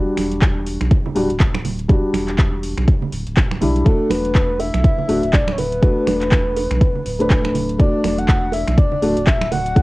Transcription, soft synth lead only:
3.86 4.12 A4 loud
4.11 4.61 B4 loud
4.60 5.35 E5 loud
5.34 5.52 D5 loud
5.52 5.60 C#5 medium
5.58 7.55 B4 loud
7.80 8.20 D5 loud
8.18 8.53 F#5 loud
8.53 8.79 E5 loud
8.78 9.29 D5 loud
9.27 9.51 E5 loud
9.52 9.82 F#5 loud

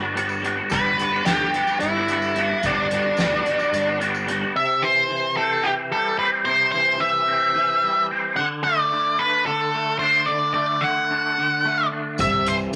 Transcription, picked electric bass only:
0.00 0.60 G1 medium
0.72 1.19 G1 medium
1.27 1.50 D2 medium
1.82 2.52 G1 medium
2.64 3.10 G1 loud
3.18 3.41 D2 medium
3.72 4.43 G1 medium
12.20 12.66 C2 medium

